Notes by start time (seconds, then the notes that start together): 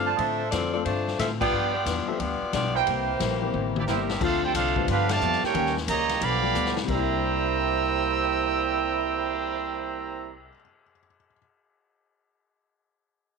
Already playing: G2 F3 A3 C4 D4 A4 C5 F5
0.06 F4 C5 D5 A5
0.16 A2 D3 D4 A4 C5 D#5 E5, kick, ride
0.20 A3 C4 F4
0.51 F2 D3 A3 C4 F4 A4 D5, kick, snare, hi-hat pedal, ride
0.73 F3 A3 C4 D4 F4 A4 D5
0.85 G2 D3 A3 C4 D4 F4 C5, kick, ride
1.08 snare
1.19 A2 D3 A3 C4 F4 A4 E5, kick, snare, hi-hat pedal, ride
1.40 F3 G3 B3 D4 F4 G4 B4 D5 G5, kick, crash
1.52 G2 F3 B3 D4
1.74 B3 F4 G4 D5
1.86 E2 G2 F3 B3 D4, kick, snare, hi-hat pedal, ride
2.07 F3 G3 B3 C4 D4 F4 G4 A4 E5, muted upright bass stroke
2.19 D2 G2 F3 B3 D4 F4 G4 D5, kick, ride
2.41 muted upright bass stroke
2.53 B1 G2 F3 B3 D4 F4 G4 D5, kick, snare, hi-hat pedal, ride
2.74 E3 G3 A#3 C4 E4 G4 A#4 C5 G5
2.86 C2 C3 G3 A#3 E4, kick, ride
3.20 A#1 C3 G3 A#3 E4, kick, snare, hi-hat pedal, ride
3.42 E3 G3 A#3 C4 G4
3.53 A1 C3 G3 A#3 E4, mid tom
3.76 A#3 D4 E4 G4 D5, mid tom
3.87 G1 C3 G3 A#3 C4 E4 G4 A#4 C5 E5 G5, snare, hi-hat pedal
4.10 snare
4.20 D2 D3 F3 A3 C4 D4 F4 A4 C5 F5, kick, crash
4.44 E4 G4 A4 C5 G5
4.54 C2 D3 A3 C4 D4 F4 A4 C5 F5, kick, hi-hat pedal, ride
4.76 D3 F3 G3 B3 F4, kick
4.88 G2 F3 B3 D4 F4 G4 B4 F5, kick, ride
5.09 D3 F3 A3 G4 D5 F5 A5, snare, ride
5.21 F2 G2 F3 B3 D4, hi-hat pedal
5.32 snare
5.43 A#3 C#4 D#4 G4 A#4 C#5 G5, muted upright bass stroke, snare
5.54 D#2 D#3 G3 A#3 C#4 G4, kick, ride
5.66 snare
5.77 snare
5.88 C#2 C#3 D#3 G3 A#3 C#4 G4 C#5 D#5 A#5, kick, hi-hat pedal, ride
6.09 snare, ride
6.21 B1 G2 D3 F3 B3 D4 G4 D5 F5 B5, kick, ride
6.42 F3 G3 B3 D4 G4
6.54 D2 G2 F3 B3 D4, hi-hat pedal
6.66 snare
6.77 snare
6.83 C3 G3
6.88 C2 C3 G3 A#3 D4 E4 C5 G5 A#5 E6, kick, crash
6.95 A#3 E4
6.99 E4
7.10 cymbal swell
7.21 G4
7.29 A#4
7.37 D5
7.46 G5
7.56 A#5
7.67 D6
7.78 G6
7.91 A#6